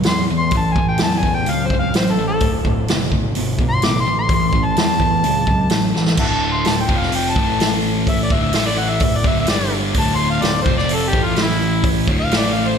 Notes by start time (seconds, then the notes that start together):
0.03 E2 A2 F#3, snare, open hi-hat
0.07 C6
0.30 E2 A2 E3
0.37 C6
0.51 A1 A2, kick, open hi-hat
0.55 E3 A5
0.73 A1 G#5, kick
0.78 A2 E3
0.88 G5
0.98 E2 A2, snare, open hi-hat
1.02 F#3 A5
1.17 G#5
1.23 E2 A2 E3, kick
1.34 G5
1.46 C#2 A2 F#3 F5, open hi-hat
1.66 C5
1.70 C#2 A2 F#3, kick
1.79 F5
1.94 A1 A2 F#3 C5, snare, open hi-hat
2.12 A4
2.18 A1 A2 E3
2.27 A4
2.40 D1 D2 A2, kick, open hi-hat
2.65 D1 D2 A2, kick
2.88 F#1 D2 B2, snare, open hi-hat
3.11 F#1 D2 A2, kick
3.35 G1 D2 B2, open hi-hat
3.59 G1 D2 B2, kick
3.70 C6
3.82 A1 D2 B2 D6, snare, open hi-hat
4.00 C6
4.06 A1 D2 A2
4.19 C6
4.29 A1 A2 E3, kick, open hi-hat
4.34 C6
4.49 A1 C6, kick
4.54 A2 E3
4.64 A5
4.76 E2 A2 F#3, snare, open hi-hat
5.00 E2 A2 E3, kick
5.24 C#2 A2 F#3, open hi-hat
5.47 C#2 A2 F#3, kick
5.70 A1 A2 F#3, snare, open hi-hat
5.94 A1 A2 E3, snare
6.07 snare
6.17 D1 D2 A2 D3 E5 F#5 A5, kick, crash
6.53 C6
6.65 D1 D2 A2 A5, snare, open hi-hat
6.81 G5
6.89 F1 F2 C3 F3, kick
6.98 F5
7.02 snare
7.12 G5, open hi-hat
7.30 A5
7.36 A1 A2 E3 A3, kick
7.60 snare, open hi-hat
8.07 E5, kick, open hi-hat
8.23 D5
8.30 D1 D2 A2 D3 E5, kick
8.42 E5
8.53 A1 A2 E3 A3 E5, snare, open hi-hat
8.66 D5
8.78 F#5
8.90 E5
9.00 D1 D2 A2 E5, kick, open hi-hat
9.16 D5
9.24 D1 D2 A2 D3 E5, kick
9.40 E5
9.47 G1 G2 D3 G3 D5, snare, open hi-hat
9.94 D1 D2 A2 D3, kick, open hi-hat
9.99 A5
10.16 C6
10.30 F5
10.41 D1 D2 A2 D5, snare, open hi-hat
10.62 C5, kick
10.66 F1 F2 C3 F3
10.77 D5, snare
10.89 open hi-hat
10.94 A4
11.09 G4
11.13 A1 A2 E3 A3, kick
11.24 F4
11.36 snare, open hi-hat
11.43 E4
11.50 snare
11.84 kick, open hi-hat
12.08 D1 D2 A2 D3, kick
12.20 F5
12.31 A1 A2 E3 A3, snare, open hi-hat
12.37 D5
12.53 F5
12.68 C5